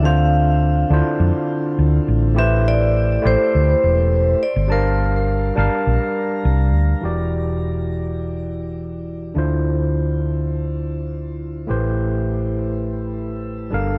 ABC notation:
X:1
M:4/4
L:1/16
Q:1/4=103
K:Am
V:1 name="Vibraphone"
f6 z8 z2 | e2 d4 c8 d2 | _B12 z4 | z16 |
z16 | z16 |]
V:2 name="Tine electric piano"
[D,CDFc]6 [D,DEFc]8- [D,DEFc]2 | [A,EGBc]6 [A,EGAc]8 z2 | [G,D_Bfa]6 [G,DBfa]8- [G,DBfa]2 | [E,E^FGd]16 |
[D,DEFc]16 | [A,EGBc]12- [A,EGBc]2 [G,DA_Bf]2 |]
V:3 name="Fingered electric bass" clef=bass
D,,4- D,, z D,, z F,, z3 D,, z A,,,2- | A,,,4- A,,, z A,,, z D,, z E,,,3 z2 G,,,- | G,,,4- G,,, z G,,, z _B,,, z3 C,,2 D,, z | E,,,16 |
D,,16 | A,,,12- A,,,2 G,,,2 |]